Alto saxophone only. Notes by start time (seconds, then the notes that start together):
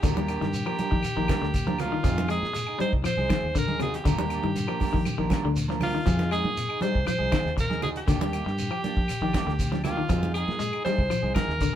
Already playing: G4
1.80 F4
2.31 G#4
2.81 C5
3.06 C5
3.58 A#4
3.82 G#4
3.96 G4
5.83 F4
6.32 G#4
6.82 C5
7.07 C5
7.60 A#4
7.83 G#4
7.97 G4
9.84 F4
10.34 G#4
10.85 C5
11.35 A#4